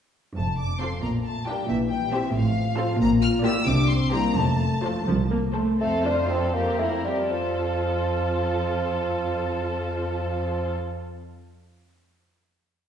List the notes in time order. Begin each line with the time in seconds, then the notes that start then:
0.35 F1 F2 A3 A5
0.56 D4 D6
0.79 C4 F4 A4 C5 C6
1.02 A#1 A#2 A#3 A#5
1.24 A3 A5
1.46 G3 D4 F4 G4 A#4 G5
1.68 A#1 A#2 E3 E5
1.89 G3 G5
2.11 E3 C4 G4 C5 E5
2.35 A1 A2 F3 F5
2.78 C4 F4 A4 C5
3.00 A#1 A#2 A#3 A#5
3.20 F4 F6
3.42 A#3 E4 F4 G4 D5 E6
3.66 C2 C3 D4 D6
3.89 C4 C6
4.12 G3 A#3 E4 G4 C5 A#5
4.35 F1 F2 A3 A5
4.81 F3 F4 A4 C5
5.07 C2 F3
5.31 A#3
5.55 A3 A4 C5
5.80 F2 A3 C4 A4 F5
6.05 D4 F4 C5
6.29 C4 A4 F5
6.54 A#3 C4 G4 A#4
6.79 A3 E4 A#4 C5
7.04 G3 C4 G4 A#4
7.29 F2 F3 F4 A4 C5